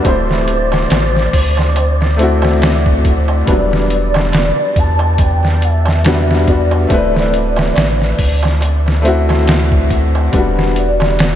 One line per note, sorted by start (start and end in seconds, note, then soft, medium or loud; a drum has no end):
0.00 2.13 A3 medium
0.00 11.36 D5 medium
0.00 0.08 D5 medium
0.04 0.87 D1 loud
0.04 2.14 C4 medium
0.04 2.15 E4 medium
0.04 2.63 C5 loud
0.04 kick loud
0.04 closed hi-hat medium
0.04 darbuka tek medium
0.08 2.16 C5 medium
0.29 snare soft
0.29 darbuka tek soft
0.48 closed hi-hat medium
0.72 snare medium
0.72 darbuka tek medium
0.90 1.29 A1 medium
0.90 snare loud
0.90 closed hi-hat medium
0.90 darbuka tek medium
1.14 snare soft
1.14 darbuka tek soft
1.33 3.44 D2 medium
1.33 kick medium
1.33 open hi-hat medium
1.57 snare soft
1.57 darbuka tek medium
1.76 closed hi-hat medium
1.76 darbuka tek medium
2.01 snare soft
2.01 darbuka tek soft
2.17 3.42 A3 medium
2.17 3.43 C4 medium
2.17 3.44 E4 medium
2.17 closed hi-hat medium
2.23 3.45 F#4 medium
2.42 snare soft
2.42 darbuka tek medium
2.62 snare loud
2.62 closed hi-hat medium
2.62 darbuka tek medium
2.86 kick medium
2.86 darbuka tek soft
3.05 kick medium
3.05 closed hi-hat medium
3.28 darbuka tek medium
3.46 4.53 E1 loud
3.46 5.99 G3 medium
3.46 6.00 B3 medium
3.46 6.01 D4 medium
3.46 3.88 D5 medium
3.46 kick loud
3.46 closed hi-hat medium
3.46 darbuka tek medium
3.51 6.02 F#3 medium
3.71 snare soft
3.71 darbuka tek soft
3.90 4.80 D5 loud
3.90 closed hi-hat medium
4.14 snare medium
4.14 darbuka tek medium
4.32 snare loud
4.32 closed hi-hat medium
4.32 darbuka tek medium
4.56 darbuka tek soft
4.76 6.87 E2 medium
4.76 5.22 A5 loud
4.76 kick medium
4.76 closed hi-hat medium
4.99 darbuka tek medium
5.18 5.65 G5 loud
5.18 kick loud
5.18 closed hi-hat medium
5.18 darbuka tek medium
5.43 snare soft
5.43 darbuka tek soft
5.62 6.05 E5 loud
5.62 closed hi-hat medium
5.85 snare soft
5.85 darbuka tek medium
6.04 6.43 G3 medium
6.04 6.43 B3 medium
6.04 6.44 D4 medium
6.04 6.44 F#4 loud
6.04 6.50 E5 medium
6.04 snare loud
6.04 closed hi-hat medium
6.04 darbuka tek medium
6.28 snare medium
6.28 darbuka tek soft
6.47 6.85 G3 medium
6.47 6.86 B3 medium
6.47 6.87 D4 medium
6.47 6.87 F#4 medium
6.47 9.05 D5 loud
6.47 kick medium
6.47 closed hi-hat medium
6.71 darbuka tek medium
6.87 7.73 D1 loud
6.87 8.99 A3 medium
6.87 9.00 C4 medium
6.87 kick loud
6.87 closed hi-hat medium
6.87 darbuka tek medium
6.92 9.01 E4 medium
6.92 9.02 B4 medium
7.15 snare soft
7.15 darbuka tek soft
7.34 closed hi-hat medium
7.56 snare medium
7.56 darbuka tek medium
7.75 8.15 A1 medium
7.75 snare loud
7.75 closed hi-hat medium
7.75 darbuka tek medium
8.00 snare soft
8.00 darbuka tek soft
8.19 10.30 D2 medium
8.19 kick medium
8.19 open hi-hat medium
8.43 snare soft
8.43 darbuka tek medium
8.61 closed hi-hat medium
8.61 darbuka tek medium
8.86 snare soft
8.86 darbuka tek soft
9.02 10.27 A3 medium
9.02 10.28 C4 medium
9.02 10.29 E4 medium
9.02 closed hi-hat medium
9.08 10.30 F#4 loud
9.29 snare soft
9.29 darbuka tek medium
9.47 snare loud
9.47 closed hi-hat medium
9.47 darbuka tek medium
9.72 kick medium
9.72 darbuka tek soft
9.90 kick medium
9.90 closed hi-hat medium
10.15 darbuka tek medium
10.32 11.36 E1 loud
10.32 11.36 G3 medium
10.32 11.36 B3 medium
10.32 11.36 D4 medium
10.32 kick loud
10.32 closed hi-hat medium
10.32 darbuka tek medium
10.37 11.36 F#4 medium
10.57 snare soft
10.57 darbuka tek soft
10.76 11.17 D5 medium
10.76 closed hi-hat medium
11.00 snare medium
11.00 darbuka tek medium
11.19 11.36 D5 loud
11.19 snare loud
11.19 closed hi-hat medium
11.19 darbuka tek medium